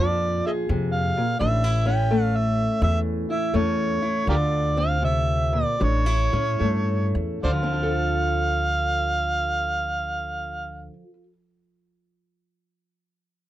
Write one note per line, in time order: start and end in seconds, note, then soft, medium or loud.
0.00 0.40 F2 medium
0.00 1.15 A#2 medium
0.00 0.70 F3 medium
0.00 1.37 D4 medium
0.00 0.45 G#4 medium
0.00 0.48 D5 medium
0.46 1.38 G#4 medium
0.46 0.50 D#5 medium
0.46 0.49 E5 medium
0.69 1.11 F2 medium
0.69 1.16 C3 medium
0.92 1.39 F5 loud
1.17 1.39 A#2 medium
1.39 2.66 A1 loud
1.39 4.24 A2 medium
1.39 1.64 D4 medium
1.39 1.84 E5 medium
1.64 3.29 E4 medium
1.86 3.53 C#4 medium
1.86 2.23 G5 medium
2.11 3.53 A3 medium
2.23 2.38 F5 medium
2.36 2.82 E5 medium
2.82 3.24 E2 loud
2.82 4.25 E3 medium
2.82 2.99 E5 medium
3.30 4.01 E4 medium
3.30 3.58 E5 medium
3.53 3.97 E2 medium
3.53 5.56 A3 medium
3.53 4.25 C#4 medium
3.53 4.29 C#5 medium
4.02 4.25 E4 medium
4.27 5.63 D2 medium
4.27 5.01 D3 medium
4.27 5.77 F4 medium
4.27 4.36 G4 medium
4.27 4.36 A#4 medium
4.27 4.81 D5 medium
4.77 5.77 C4 medium
4.77 5.04 F5 medium
5.02 5.53 C3 medium
5.02 5.56 E5 medium
5.53 5.79 A#2 medium
5.53 5.85 D5 medium
5.80 6.27 A1 medium
5.80 7.39 A2 medium
5.80 6.06 D4 medium
5.80 7.16 C#5 medium
6.06 7.43 E4 soft
6.33 6.58 A2 medium
6.33 7.40 C#4 medium
6.60 7.10 G2 medium
6.60 7.39 A3 medium
7.15 7.40 E2 medium
7.43 10.87 D2 medium
7.43 10.93 D3 medium
7.43 7.51 C5 medium
7.43 7.50 D5 medium
7.43 10.87 F5 medium
7.53 11.03 F3 medium
7.63 11.13 C4 medium
7.73 11.23 F4 medium
7.83 11.33 A4 medium